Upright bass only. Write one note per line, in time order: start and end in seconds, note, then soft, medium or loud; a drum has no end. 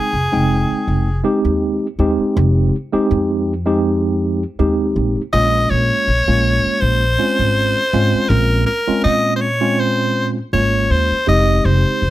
0.13 0.31 F1 medium
0.34 0.66 F1 medium
0.71 muted upright bass stroke soft
0.88 1.21 F1 medium
1.45 1.78 D#2 medium
1.99 2.17 D#2 medium
2.19 muted upright bass stroke soft
2.37 2.69 F1 loud
2.94 muted upright bass stroke soft
3.11 4.43 F2 medium
4.59 4.92 D#2 medium
4.96 5.14 A#1 medium
5.16 muted upright bass stroke soft
5.33 5.66 A#1 medium
5.71 5.89 A#1 medium
6.08 6.26 A#1 medium
6.28 6.61 A#1 medium
6.65 muted upright bass stroke soft
6.82 7.15 A#1 medium
7.39 7.72 G#1 medium
7.93 8.11 G#1 medium
8.14 muted upright bass stroke soft
8.30 8.63 A#1 loud
8.88 muted upright bass stroke soft
9.05 10.38 A#2 medium
10.53 10.86 G#1 medium
10.90 11.08 D#2 medium
11.11 muted upright bass stroke soft
11.28 11.61 F1 loud
11.65 11.83 F1 loud
12.02 12.10 F1 medium